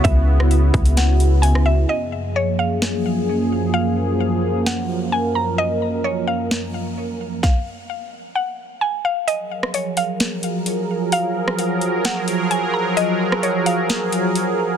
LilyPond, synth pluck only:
\new Staff \with { instrumentName = "Synth pluck" } { \time 4/4 \key fis \major \tempo 4 = 130 e''4 r4 fis''4 gis''8 e''8 | dis''4 cis''8 eis''8 r2 | eis''4 r4 fis''4 gis''8 ais''8 | dis''4 cis''8 eis''8 r2 |
eis''4 r4 fis''4 gis''8 eis''8 | dis''4 cis''8 eis''8 r2 | eis''4 r4 fis''4 gis''8 ais''8 | dis''4 cis''8 eis''8 r2 | }